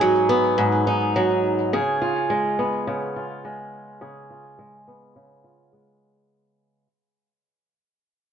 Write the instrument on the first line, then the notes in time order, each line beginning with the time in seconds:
steel-string acoustic guitar
Already playing: G#2 B3 D#4 G#4
0.01 F#3
0.29 B3
0.58 G#2
0.87 D#4
1.16 F#3
1.73 C#3 G#4
2.02 F4
2.30 G#3
2.59 B3
2.87 C#3
3.16 F4
3.45 G#3
4.01 C#3 G#4
4.30 F4
4.59 G#3
4.88 B3
5.16 C#3
5.44 F4
5.73 G#3